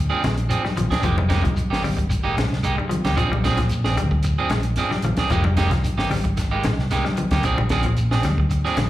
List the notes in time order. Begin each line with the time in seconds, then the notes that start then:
0.10 F3 C4 D4 G#4, muted fingered electric bass stroke
0.23 A#1 G#3, muted clean electric guitar stroke, snare, closed hi-hat, high conga, low conga, shekere
0.37 closed hi-hat
0.49 F3 C4 D4 G#4, closed hi-hat, shekere
0.64 G3, muted clean electric guitar stroke, snare, high conga
0.77 A#1 F3, muted clean electric guitar stroke, closed hi-hat, low conga, shekere
0.90 C4 D4 G#4, muted fingered electric bass stroke, kick, snare, closed hi-hat
1.03 F1 F3 G#3 A#3 G4, muted clean electric guitar stroke, kick, closed hi-hat, shekere
1.18 G3, muted clean electric guitar stroke, high conga
1.29 G#3 A#3 D#4 G4, kick, snare, closed hi-hat, low conga, shekere
1.44 C2 F3, muted clean electric guitar stroke, kick, closed hi-hat, high conga
1.56 closed hi-hat, shekere
1.70 G#1 A#3 D#4 G4, snare
1.83 G3, muted clean electric guitar stroke, open hi-hat, high conga, low conga, shekere
1.97 muted clean electric guitar stroke, kick, closed hi-hat
2.10 muted clean electric guitar stroke, kick, closed hi-hat, shekere
2.24 G#3 A#3 D#4 G4
2.37 A#1 G#3, muted clean electric guitar stroke, snare, closed hi-hat, high conga, shekere
2.52 C2, snare
2.63 G#3 A#3 D#4 G4, closed hi-hat, shekere
2.77 G3, muted clean electric guitar stroke, high conga
2.89 F3, muted clean electric guitar stroke, closed hi-hat, low conga, shekere
3.04 D2 A#3 D#4 G4, kick, snare, closed hi-hat
3.16 A#1 F3 C4 D4 G#4, kick, closed hi-hat, shekere
3.31 A#1 G3, muted clean electric guitar stroke, high conga
3.44 F3 C4 D4 G#4, kick, snare, closed hi-hat, shekere
3.57 A#2 F3, muted clean electric guitar stroke, kick, snare, closed hi-hat, high conga
3.69 closed hi-hat, shekere
3.84 A#1 C4 D4 G#4, snare
3.97 D2 G3, muted clean electric guitar stroke, closed hi-hat, high conga, low conga, shekere
4.11 muted clean electric guitar stroke, kick
4.23 muted clean electric guitar stroke, closed hi-hat, shekere
4.37 F3 C4 D4 G#4, muted fingered electric bass stroke
4.49 A#1 G#3, snare, closed hi-hat, high conga, shekere
4.63 closed hi-hat
4.76 F3 C4 D4 G#4, snare, closed hi-hat, shekere
4.91 G3, muted clean electric guitar stroke, snare, high conga
5.02 A#1 F3, muted clean electric guitar stroke, closed hi-hat, low conga, shekere
5.17 C4 D4 G#4, muted fingered electric bass stroke, kick, snare, closed hi-hat
5.30 F1 F3 G#3 A#3 D#4 G4, kick, closed hi-hat, shekere
5.44 G3, muted clean electric guitar stroke, high conga
5.57 G#3 A#3 D#4 G4, kick, snare, closed hi-hat, shekere
5.71 C2 F3, muted clean electric guitar stroke, kick, snare, closed hi-hat
5.84 closed hi-hat, high conga, shekere
5.98 G#1 A#3 D#4 G4, snare
6.10 G3, muted clean electric guitar stroke, snare, open hi-hat, high conga, low conga, shekere
6.24 muted clean electric guitar stroke, kick, closed hi-hat
6.37 muted clean electric guitar stroke, kick, snare, closed hi-hat, shekere
6.51 G#3 A#3 D#4 G4
6.64 A#1 G#3, snare, closed hi-hat, high conga, shekere
6.77 C2, snare
6.91 G#3 A#3 D#4 G4, snare, closed hi-hat, shekere
7.05 G3, muted clean electric guitar stroke, snare, high conga
7.17 F3, muted clean electric guitar stroke, closed hi-hat, high conga, low conga, shekere
7.31 D2 A#3 D#4 G4, kick, snare, closed hi-hat
7.43 A#1 F3 C4 D4 G#4, muted clean electric guitar stroke, kick, closed hi-hat, shekere
7.58 A#1 G3, muted clean electric guitar stroke, high conga
7.69 F3 C4 D4 G#4, kick, snare, closed hi-hat, low conga, shekere
7.83 A#2 F3, muted clean electric guitar stroke, kick, closed hi-hat
7.97 closed hi-hat, shekere
8.11 A#1 C4 D4 G#4, snare
8.23 D2 G3, muted clean electric guitar stroke, snare, closed hi-hat, high conga, low conga, shekere
8.38 muted clean electric guitar stroke, kick
8.50 muted clean electric guitar stroke, closed hi-hat, shekere
8.65 F3 C4 D4 G#4, muted fingered electric bass stroke, snare
8.77 A#1 G#3, muted clean electric guitar stroke, snare, closed hi-hat, high conga, low conga, shekere